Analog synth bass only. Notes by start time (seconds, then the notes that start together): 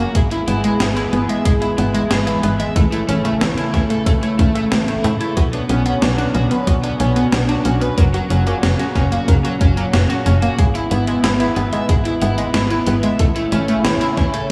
0.15 G#1
0.48 G#1
0.80 G#1
1.13 G#1
1.46 G#1
1.78 G#1
2.11 G#1
2.44 G#1
2.76 A1
3.09 A1
3.41 A1
3.74 A1
4.06 A1
4.39 A1
4.72 A1
5.04 A2
5.37 B1
5.69 B1
6.02 B1
6.35 B1
6.67 B1
7.00 B1
7.33 B1
7.65 B1
7.98 F#1
8.30 F#1
8.63 F#1
8.96 F#1
9.28 F#1
9.61 F#1
9.94 F#1
10.26 F#1
10.59 G#1
10.91 G#1
11.24 G#1
11.57 G#1
11.89 G#1
12.22 G#1
12.54 G#1
12.87 G#1
13.20 A1
13.52 A1
13.85 A1
14.17 A1